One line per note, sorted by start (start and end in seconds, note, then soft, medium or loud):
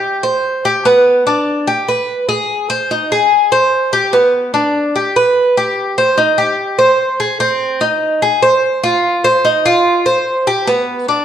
0.00 0.23 G4 medium
0.23 0.64 C5 medium
0.65 0.85 G4 medium
0.85 1.25 B3 medium
1.27 1.66 D4 medium
1.67 1.87 G4 medium
1.88 2.28 B4 medium
2.29 2.69 G#4 medium
2.70 2.90 C5 medium
2.91 3.11 D#4 medium
3.12 3.51 G#4 medium
3.52 3.92 C5 medium
3.93 4.13 G4 medium
4.13 4.53 B3 medium
4.54 4.94 D4 medium
4.96 5.15 G4 medium
5.16 5.55 B4 medium
5.57 5.97 G4 medium
5.98 6.17 C5 medium
6.18 6.37 D#4 medium
6.38 6.78 G4 medium
6.79 7.18 C5 medium
7.20 7.40 G#4 medium
7.40 7.80 C4 medium
7.81 8.21 D#4 medium
8.22 8.42 G#4 medium
8.42 8.82 C5 medium
8.84 9.23 F4 medium
9.24 9.44 C5 medium
9.45 9.65 D#4 medium
9.66 10.05 F4 medium
10.06 10.46 C5 medium
10.47 10.67 G4 medium
10.67 11.07 B3 medium
11.08 11.25 D4 medium